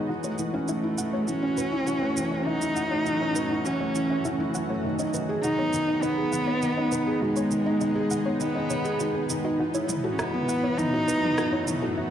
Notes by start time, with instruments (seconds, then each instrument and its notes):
Already playing: felt piano D#3 G#3 B3 D#4
0.09 ambient pad E3 F#3 A3 C#4 F#4, felt piano E3, synth arpeggio sound F#4
0.24 felt piano A3, synth arpeggio sound C#5, shaker
0.38 felt piano E3, shaker
0.54 felt piano C#4, synth arpeggio sound E4
0.68 felt piano E3, cello A3, synth arpeggio sound E4, shaker
0.83 felt piano E4
0.98 felt piano E3, synth arpeggio sound F#5, shaker
1.13 felt piano A3, synth arpeggio sound C#5
1.28 felt piano E3, cello C#4, shaker
1.43 felt piano C#4, synth arpeggio sound C#4
1.57 felt piano E3, synth arpeggio sound B4, shaker
1.72 felt piano E4
1.87 felt piano E3, synth arpeggio sound F#4, shaker
2.02 felt piano A3, synth arpeggio sound C#5
2.17 felt piano E3, shaker
2.32 felt piano C#4, synth arpeggio sound E4
2.46 felt piano E3, cello D#4, synth arpeggio sound E4
2.61 felt piano E4, shaker
2.76 felt piano E3, synth arpeggio sound F#5, shaker
2.91 felt piano A3, synth arpeggio sound C#5
3.06 felt piano E3, shaker
3.21 felt piano C#4, synth arpeggio sound C#4
3.36 felt piano E3, synth arpeggio sound B4, shaker
3.51 felt piano E4
3.65 felt piano E3, cello C#4, synth arpeggio sound F#4, shaker
3.80 felt piano A3, synth arpeggio sound C#5
3.95 felt piano E3, shaker
4.10 felt piano C#4, synth arpeggio sound E4
4.25 felt piano E3, synth arpeggio sound E4, shaker
4.40 felt piano E4
4.54 felt piano E3, synth arpeggio sound F#5, shaker
4.69 felt piano A3, synth arpeggio sound C#5
4.84 felt piano D#3, ambient pad G#3 B3 D#4
4.99 synth arpeggio sound C#4, felt piano D#4, shaker
5.14 felt piano D#3, synth arpeggio sound B4, shaker
5.29 felt piano G#4
5.43 felt piano D#3, cello D#4, synth arpeggio sound F#4, shaker
5.59 felt piano B3, synth arpeggio sound C#5
5.73 felt piano D#3, shaker
5.88 synth arpeggio sound D#4, felt piano D#4
6.02 felt piano D#3, cello B3, synth arpeggio sound D#4, shaker
6.18 felt piano G#4
6.33 felt piano D#3, synth arpeggio sound F#5, shaker
6.47 felt piano B3, synth arpeggio sound C#5
6.62 felt piano D#3, shaker
6.77 synth arpeggio sound C#4, felt piano D#4
6.92 felt piano D#3, synth arpeggio sound B4, shaker
7.07 felt piano G#4
7.21 felt piano D#3, cello G#3, synth arpeggio sound F#4
7.36 felt piano B3, synth arpeggio sound C#5, shaker
7.51 felt piano D#3, shaker
7.66 felt piano D#4, synth arpeggio sound D#4
7.81 felt piano D#3, synth arpeggio sound D#4, shaker
7.96 felt piano G#4
8.10 felt piano D#3, synth arpeggio sound F#5, shaker
8.25 felt piano B3, synth arpeggio sound C#5
8.40 felt piano D#3, cello B3, shaker
8.55 synth arpeggio sound C#4, felt piano D#4
8.70 felt piano D#3, synth arpeggio sound C#5, shaker
8.85 felt piano G#4, shaker
9.00 felt piano D#3, synth arpeggio sound F#4, shaker
9.15 felt piano B3, synth arpeggio sound G#4
9.30 felt piano D#3, shaker
9.44 felt piano D#4, synth arpeggio sound F#4
9.59 ambient pad F#2 F#3 A3 F#4, felt piano E3, synth arpeggio sound F#4
9.74 felt piano E4, synth arpeggio sound C#5, shaker
9.89 felt piano E3, mid tom, shaker
10.04 felt piano F#4, synth arpeggio sound A4
10.12 cello C#4
10.19 felt piano E3, cello B3, synth arpeggio sound E4, cross-stick, shaker
10.34 felt piano B3, mid tom
10.48 felt piano E3, synth arpeggio sound F#5, shaker
10.63 felt piano E4, synth arpeggio sound C#5
10.78 felt piano E3, cello D#4, mid tom, shaker
10.93 synth arpeggio sound C#4, felt piano F#4
11.08 felt piano E3, synth arpeggio sound B4, shaker
11.23 felt piano B3, mid tom
11.38 felt piano E3, synth arpeggio sound F#4, cross-stick, shaker
11.53 felt piano E4, synth arpeggio sound C#5
11.67 felt piano E3, mid tom, shaker
11.82 felt piano F#4, synth arpeggio sound A4
11.97 felt piano E3, synth arpeggio sound E4